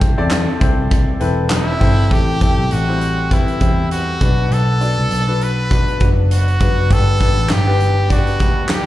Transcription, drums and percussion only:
0.01 kick, closed hi-hat
0.31 snare, clap, closed hi-hat
0.61 kick, closed hi-hat
0.91 kick, closed hi-hat
1.20 closed hi-hat
1.50 snare, clap, closed hi-hat
1.80 kick, snare, open hi-hat
2.11 kick, closed hi-hat
2.41 kick, closed hi-hat
2.71 closed hi-hat
3.01 closed hi-hat
3.31 kick, closed hi-hat
3.48 closed hi-hat
3.60 kick, closed hi-hat
3.91 closed hi-hat
4.21 kick, closed hi-hat
4.51 closed hi-hat
4.81 closed hi-hat
5.11 closed hi-hat
5.41 closed hi-hat
5.71 kick, closed hi-hat
5.88 closed hi-hat
6.00 kick, closed hi-hat
6.31 closed hi-hat
6.48 closed hi-hat
6.60 kick, closed hi-hat
6.91 kick, closed hi-hat
7.20 kick, closed hi-hat
7.49 snare, clap, closed hi-hat
7.80 closed hi-hat
8.10 kick, closed hi-hat
8.27 closed hi-hat
8.39 kick, closed hi-hat
8.69 snare, clap, closed hi-hat

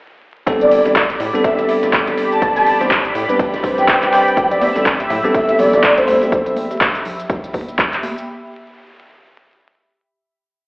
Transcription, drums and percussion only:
0.47 kick, closed hi-hat, ride, shaker
0.61 closed hi-hat, shaker
0.71 open hi-hat, ride
0.85 ride, shaker
0.96 kick, snare, clap, closed hi-hat, ride, shaker
1.10 closed hi-hat, ride, shaker
1.20 open hi-hat, ride
1.35 shaker
1.44 kick, closed hi-hat, ride, shaker
1.59 closed hi-hat, ride, shaker
1.69 open hi-hat, ride
1.83 snare, closed hi-hat, shaker
1.93 kick, snare, clap, closed hi-hat, open hi-hat, shaker
2.07 closed hi-hat, ride, shaker
2.18 open hi-hat, ride
2.32 shaker
2.42 kick, closed hi-hat, ride, shaker
2.56 snare, closed hi-hat, shaker
2.66 open hi-hat, ride
2.81 snare, shaker
2.91 kick, snare, clap, closed hi-hat, ride, shaker
3.05 closed hi-hat, shaker
3.15 open hi-hat, ride
3.29 closed hi-hat, shaker
3.39 kick, closed hi-hat, ride, shaker
3.54 snare, closed hi-hat, shaker
3.64 kick, snare, open hi-hat, ride
3.78 snare, closed hi-hat, shaker
3.88 kick, snare, clap, closed hi-hat, ride, shaker
4.03 clap, closed hi-hat, shaker
4.13 snare, open hi-hat, ride
4.27 shaker
4.37 kick, closed hi-hat, ride, shaker
4.51 closed hi-hat, low conga, shaker
4.61 open hi-hat, ride, muted conga, high conga
4.76 ride, muted conga, shaker
4.86 kick, snare, clap, closed hi-hat, ride, shaker
5.00 closed hi-hat, ride, shaker
5.10 open hi-hat, ride, low conga
5.25 shaker
5.35 kick, closed hi-hat, ride, shaker
5.49 closed hi-hat, ride, shaker
5.59 open hi-hat, ride, muted conga, high conga, low conga
5.73 snare, closed hi-hat, shaker
5.83 kick, snare, clap, closed hi-hat, open hi-hat, shaker
5.98 closed hi-hat, ride, shaker
6.08 open hi-hat, ride, high conga
6.22 muted conga, shaker
6.32 kick, closed hi-hat, shaker
6.46 closed hi-hat, low conga, shaker
6.56 open hi-hat, muted conga, high conga
6.71 muted conga, shaker
6.81 kick, clap, closed hi-hat, shaker
6.95 closed hi-hat, shaker
7.05 open hi-hat, low conga
7.20 closed hi-hat, shaker
7.30 kick, closed hi-hat, shaker
7.44 closed hi-hat, shaker
7.53 kick, open hi-hat, high conga
7.68 closed hi-hat, shaker
7.79 kick, clap, closed hi-hat, shaker
7.93 clap, closed hi-hat, shaker
8.03 open hi-hat, high conga
8.18 shaker

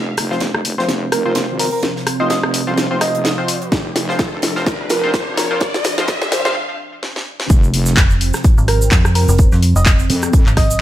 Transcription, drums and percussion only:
0.17 cross-stick, closed hi-hat, open hi-hat
0.32 snare
0.40 snare, closed hi-hat
0.55 cross-stick
0.65 closed hi-hat, open hi-hat
0.79 snare
0.89 snare, closed hi-hat
1.12 cross-stick, closed hi-hat, open hi-hat
1.35 snare, closed hi-hat
1.59 open hi-hat
1.83 snare, closed hi-hat
1.96 snare
2.07 cross-stick, closed hi-hat, open hi-hat
2.30 snare, closed hi-hat
2.43 cross-stick
2.54 closed hi-hat, open hi-hat
2.78 snare, closed hi-hat
3.01 cross-stick, snare, closed hi-hat, open hi-hat
3.15 closed hi-hat
3.25 snare, closed hi-hat
3.48 snare, closed hi-hat, open hi-hat
3.62 closed hi-hat
3.72 kick, snare, closed hi-hat
3.96 snare, closed hi-hat, open hi-hat
4.09 snare
4.19 kick, snare, closed hi-hat
4.42 snare, closed hi-hat, open hi-hat
4.56 snare
4.66 kick, snare, closed hi-hat
4.90 snare, closed hi-hat, open hi-hat
5.14 kick, snare, closed hi-hat
5.37 snare, closed hi-hat, open hi-hat
5.61 kick, snare, closed hi-hat
5.74 snare
5.84 snare, closed hi-hat, open hi-hat
5.98 snare
6.08 kick, snare, closed hi-hat
6.22 snare
6.32 snare, closed hi-hat, open hi-hat
6.45 snare
7.03 snare
7.16 snare
7.40 snare
7.50 kick, closed hi-hat, shaker
7.63 shaker
7.74 closed hi-hat, open hi-hat
7.86 snare, shaker
7.97 kick, snare, clap, closed hi-hat, shaker
8.10 shaker
8.21 closed hi-hat, open hi-hat
8.33 cross-stick, snare, shaker
8.44 kick, closed hi-hat, shaker
8.58 shaker
8.68 cross-stick, closed hi-hat, open hi-hat
8.81 shaker
8.91 kick, snare, clap, closed hi-hat, shaker
9.05 cross-stick, shaker
9.15 open hi-hat
9.28 shaker
9.38 kick, closed hi-hat, shaker
9.52 snare, shaker
9.62 closed hi-hat, open hi-hat
9.76 shaker
9.86 kick, snare, clap, closed hi-hat, shaker
9.99 shaker
10.10 closed hi-hat, open hi-hat
10.22 cross-stick, shaker
10.33 kick, closed hi-hat, shaker
10.46 clap, shaker
10.57 kick, cross-stick, snare, closed hi-hat, open hi-hat
10.70 closed hi-hat, shaker

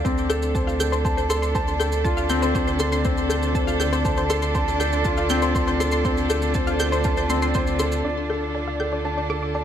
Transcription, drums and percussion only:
0.05 kick, shaker
0.18 shaker
0.30 shaker
0.42 shaker
0.55 kick, shaker
0.69 shaker
0.80 shaker
0.93 shaker
1.05 kick, shaker
1.18 shaker
1.30 shaker
1.43 shaker
1.55 kick, shaker
1.68 shaker
1.80 shaker
1.92 shaker
2.05 kick, shaker
2.17 shaker
2.29 shaker
2.43 shaker
2.55 kick, shaker
2.67 shaker
2.79 shaker
2.92 shaker
3.05 kick, shaker
3.17 shaker
3.30 shaker
3.43 shaker
3.55 kick, shaker
3.68 shaker
3.81 shaker
3.93 shaker
4.05 kick, shaker
4.17 shaker
4.30 shaker
4.42 shaker
4.55 kick, shaker
4.68 shaker
4.80 shaker
4.93 shaker
5.05 kick, shaker
5.17 shaker
5.29 shaker
5.42 shaker
5.55 kick, shaker
5.67 shaker
5.81 shaker
5.91 shaker
6.05 kick, shaker
6.17 shaker
6.30 shaker
6.42 shaker
6.54 kick, shaker
6.67 shaker
6.80 shaker
6.93 shaker
7.04 kick, shaker
7.17 shaker
7.30 shaker
7.42 shaker
7.54 kick, shaker
7.67 shaker
7.79 shaker
7.92 shaker

